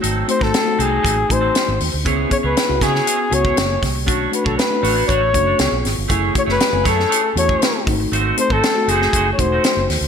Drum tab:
HH |x-x-x-x-x-x-x-o-|x-x-x-x-x-x-x-o-|x-x-x-o-x-x-x-o-|x-x-x-x-x-x-x-o-|
SD |---oo-------o---|----o-oo----o-o-|----o-------o-o-|---oo-oo----o---|
BD |---o----o-o-----|o-o---o----o--o-|o--o----o-o-----|o-o---o----o--o-|

HH |x-x-x-x-x-x-x-o-|
SD |----o--o----o-o-|
BD |---o----o-o-----|